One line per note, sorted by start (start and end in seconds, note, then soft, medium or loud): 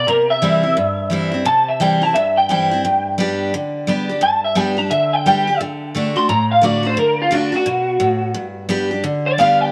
0.07 0.74 C3 medium
0.07 0.29 A#4 medium
0.30 1.30 E5 loud
0.42 0.63 E3 medium
0.42 0.63 G3 medium
0.42 0.63 C4 medium
0.42 0.62 E4 loud
0.63 0.77 C4 soft
0.63 0.76 E4 medium
0.77 1.43 G2 medium
1.10 1.32 E3 medium
1.10 1.32 G3 medium
1.10 1.33 C4 medium
1.10 1.30 E4 loud
1.32 1.46 C4 medium
1.32 1.45 E4 medium
1.45 2.12 C3 medium
1.45 1.67 A5 loud
1.68 1.81 E5 medium
1.80 2.01 E3 medium
1.80 2.01 G3 medium
1.80 2.02 C4 medium
1.80 2.00 E4 loud
1.80 2.03 G5 medium
2.02 2.16 C4 medium
2.02 2.14 E4 medium
2.02 2.15 A5 medium
2.14 2.82 G2 medium
2.14 2.36 E5 medium
2.37 2.49 G5 loud
2.49 2.70 E3 medium
2.49 2.71 G3 medium
2.49 2.71 C4 medium
2.49 2.70 E4 medium
2.49 3.17 G5 loud
2.71 2.85 C4 medium
2.71 2.84 E4 medium
2.85 3.51 G2 medium
3.18 3.52 G3 medium
3.18 3.52 B3 medium
3.18 3.53 D4 loud
3.18 3.53 G4 loud
3.54 4.20 D3 medium
3.87 4.08 G3 medium
3.87 4.09 B3 medium
3.87 4.09 D4 medium
3.87 4.08 G4 medium
4.09 4.23 D4 medium
4.09 4.22 G4 medium
4.21 4.88 G2 medium
4.21 4.44 A5 loud
4.44 4.56 E5 medium
4.55 4.77 G3 medium
4.55 4.77 B3 medium
4.55 4.77 D4 medium
4.55 4.75 G4 medium
4.55 4.78 G5 medium
4.77 4.91 D4 medium
4.77 4.90 G4 medium
4.77 4.90 A5 loud
4.91 5.57 D3 medium
4.91 5.13 E5 medium
5.13 5.26 G5 loud
5.26 5.47 G3 medium
5.26 5.47 B3 medium
5.26 5.47 D4 medium
5.26 5.46 G4 medium
5.26 5.60 G5 loud
5.47 5.61 D4 soft
5.47 5.60 G4 medium
5.61 5.93 D3 medium
5.95 6.15 D3 medium
5.95 6.16 A3 medium
5.95 6.16 D4 loud
5.95 6.15 F#4 loud
6.16 6.30 D4 medium
6.16 6.28 F#4 medium
6.16 6.29 C6 loud
6.29 6.96 A2 loud
6.29 6.50 A#5 medium
6.51 6.64 F5 loud
6.62 6.83 D3 medium
6.62 6.84 A3 medium
6.62 6.84 D4 medium
6.62 6.82 F#4 medium
6.62 6.85 D5 loud
6.83 6.98 D4 medium
6.83 6.96 F#4 medium
6.83 6.98 C5 medium
6.97 7.30 D3 medium
6.97 7.20 A#4 medium
7.22 7.35 F4 medium
7.31 7.52 D3 medium
7.31 7.53 A3 medium
7.31 7.53 D4 medium
7.31 7.51 F#4 medium
7.35 7.55 D4 medium
7.52 7.67 D4 soft
7.52 7.66 F#4 medium
7.56 8.35 F#4 loud
7.66 7.99 B2 medium
8.00 8.34 A2 medium
8.34 9.02 G2 medium
8.69 8.90 G3 medium
8.69 8.90 B3 medium
8.69 8.91 D4 medium
8.69 8.90 G4 loud
8.91 9.05 D4 soft
8.91 9.04 G4 medium
9.04 9.71 D3 medium
9.26 9.39 D5 loud
9.38 9.72 G3 medium
9.38 9.72 B3 medium
9.38 9.72 D4 medium
9.38 9.72 G4 loud
9.38 9.61 F5 loud
9.61 9.72 G5 medium